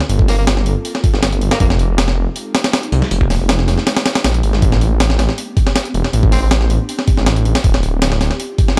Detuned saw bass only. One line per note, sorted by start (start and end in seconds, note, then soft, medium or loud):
0.09 0.65 G1 loud
0.66 0.75 G1 medium
1.14 1.40 G1 medium
1.42 1.50 G1 medium
1.60 2.16 F1 loud
2.17 2.26 F1 medium
2.92 3.01 C2 loud
3.11 3.66 F1 loud
3.68 3.77 F1 medium
4.24 4.42 A#1 medium
4.43 4.60 G#1 medium
4.62 5.17 A1 loud
5.19 5.28 A1 medium
5.94 6.03 E1 loud
6.13 6.68 A1 loud
6.70 6.79 A1 medium
7.17 7.44 A1 loud
7.45 7.54 A1 medium
7.64 8.19 D1 loud
8.21 8.30 D1 medium